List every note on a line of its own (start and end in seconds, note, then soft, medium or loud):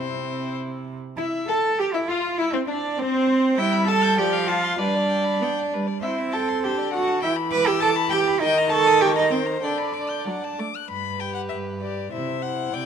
0.00 0.95 C3 soft
0.00 0.97 C4 soft
0.00 0.98 E4 soft
0.00 0.55 C5 medium
1.17 1.25 E4 medium
1.17 1.46 E4 medium
1.17 1.26 E4 medium
1.17 1.51 E5 medium
1.48 1.80 A4 medium
1.48 1.56 A4 medium
1.48 1.81 A4 medium
1.48 1.79 A5 medium
1.78 1.95 G4 medium
1.78 1.96 G4 medium
1.78 1.86 G4 medium
1.78 1.86 G5 medium
1.93 2.10 E4 medium
1.93 2.00 E4 medium
1.93 2.07 E4 medium
1.93 2.00 E5 medium
2.08 2.39 F4 medium
2.08 2.38 F4 medium
2.08 2.17 F5 medium
2.38 2.57 E4 medium
2.38 2.55 E4 medium
2.38 2.44 E4 medium
2.38 2.54 E5 medium
2.53 2.59 C4 medium
2.53 2.67 C4 medium
2.53 2.69 C4 medium
2.53 2.60 C5 soft
2.67 2.75 D4 medium
2.67 3.00 D4 medium
2.67 2.77 D4 medium
2.67 3.01 D5 medium
2.97 3.56 C4 medium
2.97 3.60 C4 medium
2.97 3.57 C4 medium
2.97 3.60 C5 medium
3.57 4.20 G3 medium
3.57 3.87 E4 medium
3.57 3.90 E5 medium
3.57 3.74 G5 medium
3.72 3.90 B5 medium
3.88 4.19 A4 loud
3.88 4.18 A5 loud
3.88 4.04 E6 medium
4.03 4.18 G6 medium
4.18 4.79 F3 medium
4.18 4.49 G4 medium
4.18 4.34 D5 medium
4.18 4.49 G5 medium
4.32 4.49 F5 medium
4.48 4.78 F4 medium
4.48 4.80 F5 medium
4.48 4.65 A5 medium
4.64 4.77 C6 medium
4.78 5.34 G3 medium
4.78 5.71 D4 medium
4.78 4.96 B4 medium
4.78 5.72 D5 medium
4.95 5.11 D5 medium
5.09 5.26 G5 medium
5.24 5.44 B5 medium
5.41 5.49 B3 medium
5.41 5.60 G5 medium
5.58 5.75 D5 soft
5.73 6.03 G3 medium
5.73 5.88 B4 soft
5.87 6.01 D5 medium
6.02 6.67 C4 medium
6.02 6.34 E4 medium
6.02 6.19 C5 medium
6.02 6.11 E5 medium
6.17 6.34 E5 medium
6.32 6.65 A4 medium
6.32 6.50 G5 medium
6.32 6.40 A5 medium
6.48 6.62 C6 medium
6.63 7.24 D3 medium
6.63 6.92 G4 medium
6.63 6.79 C5 medium
6.63 6.93 G5 medium
6.78 6.94 D5 medium
6.93 7.22 F#4 medium
6.93 7.09 F#5 medium
6.93 7.22 F#5 medium
7.07 7.22 A5 medium
7.22 8.39 E3 medium
7.22 7.30 E4 medium
7.22 7.30 E5 medium
7.22 7.37 G5 medium
7.36 7.52 B5 medium
7.51 7.68 B4 loud
7.51 7.67 B5 medium
7.51 7.68 D6 medium
7.66 7.80 G4 medium
7.66 7.82 G5 medium
7.66 7.84 E6 medium
7.80 7.89 A4 loud
7.80 8.09 A5 loud
7.80 7.97 D6 medium
7.96 8.14 B5 medium
8.10 8.41 G4 loud
8.10 8.18 G5 loud
8.10 8.29 G5 medium
8.27 8.42 B5 medium
8.40 9.61 D#3 medium
8.40 8.70 D#4 medium
8.40 8.71 D#5 loud
8.40 8.59 G5 medium
8.57 8.73 A#5 medium
8.70 9.02 A4 loud
8.70 9.03 A5 loud
8.70 8.88 C#6 medium
8.87 9.02 D#6 medium
9.01 9.15 G4 loud
9.01 9.15 G5 medium
9.01 9.17 C#6 medium
9.16 9.30 D#4 medium
9.16 9.34 D#5 medium
9.16 9.33 A#5 medium
9.31 9.39 C4 medium
9.31 9.65 C5 medium
9.31 9.48 G5 medium
9.46 9.61 A#5 medium
9.62 10.19 D3 medium
9.62 10.56 D4 medium
9.62 10.59 D5 medium
9.62 9.79 G5 medium
9.78 9.95 B5 medium
9.93 10.11 D6 soft
10.09 10.26 G6 soft
10.26 10.34 F#3 medium
10.26 10.45 F#5 soft
10.44 10.61 A5 soft
10.59 10.67 A3 medium
10.59 10.77 D6 soft
10.76 10.89 F#6 soft
10.89 11.44 G2 soft
10.89 12.09 B4 medium
10.89 11.21 B5 medium
11.20 11.81 G4 soft
11.20 11.34 G5 medium
11.34 11.41 F#5 medium
11.49 12.05 G2 soft
11.49 11.57 E5 medium
11.81 12.12 G4 soft
11.81 12.11 D5 soft
12.12 12.66 C3 soft
12.12 12.42 E4 soft
12.12 12.75 C5 soft
12.12 12.44 E5 medium
12.42 12.86 E4 soft
12.42 12.75 F#5 medium
12.72 12.86 C3 medium
12.72 12.86 D5 medium
12.72 12.86 G5 medium